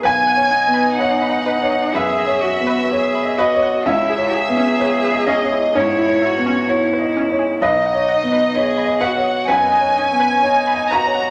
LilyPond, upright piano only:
\new Staff \with { instrumentName = "Upright piano" } { \time 4/4 \key b \major \tempo 4 = 64 << { gis''4 fis''4 e''4. dis''8 | e''4. dis''8 cis''4. r8 | dis''4. fis''8 gis''4. ais''8 | } \\ { \tuplet 3/2 { b,,8 cis''8 b8 cis''8 dis''8 cis''8 fis,8 cis''8 b8 cis''8 dis''8 cis''8 } | \tuplet 3/2 { cis,8 cis''8 b8 cis''8 dis''8 cis''8 gis,8 cis''8 b8 cis''8 dis''8 cis''8 } | \tuplet 3/2 { b,,8 cis''8 b8 cis''8 dis''8 cis''8 fis,8 cis''8 b8 cis''8 dis''8 cis''8 } | } >> }